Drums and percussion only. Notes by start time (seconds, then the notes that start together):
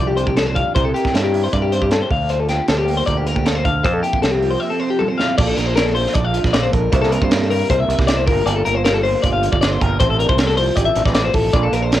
0.17 closed hi-hat
0.27 kick
0.37 snare, closed hi-hat
0.56 kick, closed hi-hat
0.76 kick, closed hi-hat
0.96 closed hi-hat
1.05 kick, snare
1.15 snare, closed hi-hat
1.34 open hi-hat
1.53 kick, closed hi-hat
1.72 closed hi-hat
1.82 kick
1.91 snare, closed hi-hat
2.01 snare
2.10 kick, open hi-hat
2.29 closed hi-hat
2.49 snare, closed hi-hat
2.68 snare, closed hi-hat
2.88 open hi-hat
3.07 kick, closed hi-hat
3.27 closed hi-hat
3.36 kick
3.46 snare, closed hi-hat
3.65 kick, closed hi-hat
3.85 kick, closed hi-hat
4.04 closed hi-hat
4.13 kick
4.23 snare, closed hi-hat
4.42 open hi-hat
5.00 high tom
5.19 snare
5.38 kick, crash
5.58 snare, closed hi-hat
5.77 snare, closed hi-hat
5.87 snare
5.96 open hi-hat
6.06 snare
6.14 kick, closed hi-hat
6.34 closed hi-hat
6.44 kick, snare
6.54 snare, closed hi-hat
6.73 kick, closed hi-hat
6.93 kick, closed hi-hat
7.03 snare
7.12 closed hi-hat
7.22 kick
7.31 snare, closed hi-hat
7.42 snare
7.51 open hi-hat
7.70 kick, closed hi-hat
7.90 closed hi-hat
7.99 kick, snare
8.08 snare, closed hi-hat
8.28 kick, open hi-hat
8.47 closed hi-hat
8.66 closed hi-hat
8.86 snare, closed hi-hat
9.05 open hi-hat
9.24 kick, closed hi-hat
9.43 closed hi-hat
9.53 kick
9.62 snare, closed hi-hat
9.81 kick, closed hi-hat
10.00 kick, closed hi-hat
10.20 closed hi-hat
10.29 kick
10.38 snare, closed hi-hat
10.49 snare
10.57 open hi-hat
10.77 kick, closed hi-hat
10.96 closed hi-hat
11.06 kick, snare
11.15 snare, closed hi-hat
11.33 kick, open hi-hat
11.53 kick, closed hi-hat
11.73 closed hi-hat
11.92 snare, closed hi-hat